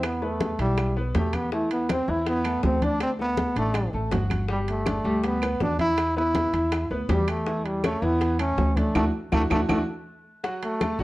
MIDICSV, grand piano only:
0, 0, Header, 1, 2, 480
1, 0, Start_track
1, 0, Tempo, 371747
1, 43, Time_signature, 4, 2, 24, 8
1, 14247, End_track
2, 0, Start_track
2, 0, Title_t, "Grand piano"
2, 0, Program_c, 0, 0
2, 0, Note_on_c, 0, 64, 70
2, 0, Note_on_c, 0, 76, 67
2, 200, Note_off_c, 0, 64, 0
2, 202, Note_off_c, 0, 76, 0
2, 283, Note_on_c, 0, 59, 66
2, 286, Note_on_c, 0, 71, 65
2, 676, Note_off_c, 0, 59, 0
2, 678, Note_off_c, 0, 71, 0
2, 761, Note_on_c, 0, 64, 73
2, 765, Note_on_c, 0, 76, 71
2, 1155, Note_off_c, 0, 64, 0
2, 1158, Note_off_c, 0, 76, 0
2, 1246, Note_on_c, 0, 59, 74
2, 1249, Note_on_c, 0, 71, 73
2, 1441, Note_off_c, 0, 59, 0
2, 1443, Note_off_c, 0, 71, 0
2, 1480, Note_on_c, 0, 67, 69
2, 1485, Note_on_c, 0, 79, 72
2, 1874, Note_off_c, 0, 67, 0
2, 1877, Note_off_c, 0, 79, 0
2, 1972, Note_on_c, 0, 52, 75
2, 1973, Note_on_c, 0, 64, 76
2, 2361, Note_off_c, 0, 52, 0
2, 2362, Note_off_c, 0, 64, 0
2, 2446, Note_on_c, 0, 60, 65
2, 2454, Note_on_c, 0, 72, 69
2, 2641, Note_off_c, 0, 60, 0
2, 2645, Note_off_c, 0, 72, 0
2, 2686, Note_on_c, 0, 52, 81
2, 2688, Note_on_c, 0, 64, 85
2, 3077, Note_off_c, 0, 52, 0
2, 3078, Note_off_c, 0, 64, 0
2, 3164, Note_on_c, 0, 57, 76
2, 3167, Note_on_c, 0, 69, 74
2, 3556, Note_off_c, 0, 57, 0
2, 3558, Note_off_c, 0, 69, 0
2, 3638, Note_on_c, 0, 62, 70
2, 3643, Note_on_c, 0, 74, 73
2, 4032, Note_off_c, 0, 62, 0
2, 4035, Note_off_c, 0, 74, 0
2, 4124, Note_on_c, 0, 57, 70
2, 4127, Note_on_c, 0, 69, 71
2, 4516, Note_off_c, 0, 57, 0
2, 4518, Note_off_c, 0, 69, 0
2, 4606, Note_on_c, 0, 62, 70
2, 4610, Note_on_c, 0, 74, 68
2, 4997, Note_off_c, 0, 62, 0
2, 4999, Note_off_c, 0, 74, 0
2, 5088, Note_on_c, 0, 57, 74
2, 5091, Note_on_c, 0, 69, 75
2, 5282, Note_off_c, 0, 57, 0
2, 5283, Note_off_c, 0, 69, 0
2, 5325, Note_on_c, 0, 66, 61
2, 5333, Note_on_c, 0, 78, 65
2, 5716, Note_off_c, 0, 66, 0
2, 5721, Note_off_c, 0, 78, 0
2, 5808, Note_on_c, 0, 55, 73
2, 5810, Note_on_c, 0, 67, 76
2, 6198, Note_off_c, 0, 55, 0
2, 6199, Note_off_c, 0, 67, 0
2, 6278, Note_on_c, 0, 62, 61
2, 6280, Note_on_c, 0, 74, 64
2, 6475, Note_off_c, 0, 62, 0
2, 6477, Note_off_c, 0, 74, 0
2, 6521, Note_on_c, 0, 55, 85
2, 6522, Note_on_c, 0, 67, 76
2, 6914, Note_off_c, 0, 55, 0
2, 6914, Note_off_c, 0, 67, 0
2, 7004, Note_on_c, 0, 59, 71
2, 7006, Note_on_c, 0, 71, 74
2, 7395, Note_off_c, 0, 59, 0
2, 7397, Note_off_c, 0, 71, 0
2, 7477, Note_on_c, 0, 64, 70
2, 7479, Note_on_c, 0, 76, 73
2, 7871, Note_off_c, 0, 64, 0
2, 7873, Note_off_c, 0, 76, 0
2, 7962, Note_on_c, 0, 59, 67
2, 7965, Note_on_c, 0, 71, 72
2, 8354, Note_off_c, 0, 59, 0
2, 8356, Note_off_c, 0, 71, 0
2, 8435, Note_on_c, 0, 64, 76
2, 8439, Note_on_c, 0, 76, 70
2, 8830, Note_off_c, 0, 64, 0
2, 8833, Note_off_c, 0, 76, 0
2, 8922, Note_on_c, 0, 59, 75
2, 8924, Note_on_c, 0, 71, 75
2, 9117, Note_off_c, 0, 59, 0
2, 9119, Note_off_c, 0, 71, 0
2, 9162, Note_on_c, 0, 67, 72
2, 9164, Note_on_c, 0, 79, 68
2, 9554, Note_off_c, 0, 67, 0
2, 9556, Note_off_c, 0, 79, 0
2, 9641, Note_on_c, 0, 52, 77
2, 9641, Note_on_c, 0, 64, 74
2, 10034, Note_off_c, 0, 52, 0
2, 10034, Note_off_c, 0, 64, 0
2, 10123, Note_on_c, 0, 61, 64
2, 10126, Note_on_c, 0, 73, 65
2, 10318, Note_off_c, 0, 61, 0
2, 10320, Note_off_c, 0, 73, 0
2, 10358, Note_on_c, 0, 52, 90
2, 10364, Note_on_c, 0, 64, 88
2, 10752, Note_off_c, 0, 52, 0
2, 10756, Note_off_c, 0, 64, 0
2, 10835, Note_on_c, 0, 57, 75
2, 10841, Note_on_c, 0, 69, 77
2, 11230, Note_off_c, 0, 57, 0
2, 11234, Note_off_c, 0, 69, 0
2, 11315, Note_on_c, 0, 62, 73
2, 11320, Note_on_c, 0, 74, 69
2, 11514, Note_off_c, 0, 62, 0
2, 11516, Note_off_c, 0, 74, 0
2, 11555, Note_on_c, 0, 62, 92
2, 11555, Note_on_c, 0, 66, 87
2, 11556, Note_on_c, 0, 64, 88
2, 11710, Note_off_c, 0, 62, 0
2, 11710, Note_off_c, 0, 66, 0
2, 11711, Note_off_c, 0, 64, 0
2, 12035, Note_on_c, 0, 64, 84
2, 12035, Note_on_c, 0, 66, 91
2, 12036, Note_on_c, 0, 62, 91
2, 12190, Note_off_c, 0, 64, 0
2, 12190, Note_off_c, 0, 66, 0
2, 12191, Note_off_c, 0, 62, 0
2, 12268, Note_on_c, 0, 62, 92
2, 12269, Note_on_c, 0, 66, 89
2, 12272, Note_on_c, 0, 64, 90
2, 12426, Note_off_c, 0, 62, 0
2, 12427, Note_off_c, 0, 66, 0
2, 12429, Note_off_c, 0, 64, 0
2, 12509, Note_on_c, 0, 64, 100
2, 12509, Note_on_c, 0, 66, 98
2, 12510, Note_on_c, 0, 62, 97
2, 12666, Note_off_c, 0, 66, 0
2, 12667, Note_off_c, 0, 62, 0
2, 12667, Note_off_c, 0, 64, 0
2, 13470, Note_on_c, 0, 54, 79
2, 13473, Note_on_c, 0, 66, 73
2, 13476, Note_on_c, 0, 78, 78
2, 13867, Note_off_c, 0, 54, 0
2, 13869, Note_off_c, 0, 66, 0
2, 13871, Note_off_c, 0, 78, 0
2, 13953, Note_on_c, 0, 57, 68
2, 13958, Note_on_c, 0, 69, 67
2, 13963, Note_on_c, 0, 81, 68
2, 14152, Note_off_c, 0, 57, 0
2, 14155, Note_off_c, 0, 69, 0
2, 14158, Note_off_c, 0, 81, 0
2, 14196, Note_on_c, 0, 54, 82
2, 14204, Note_on_c, 0, 66, 85
2, 14206, Note_on_c, 0, 78, 83
2, 14247, Note_off_c, 0, 54, 0
2, 14247, Note_off_c, 0, 66, 0
2, 14247, Note_off_c, 0, 78, 0
2, 14247, End_track
0, 0, End_of_file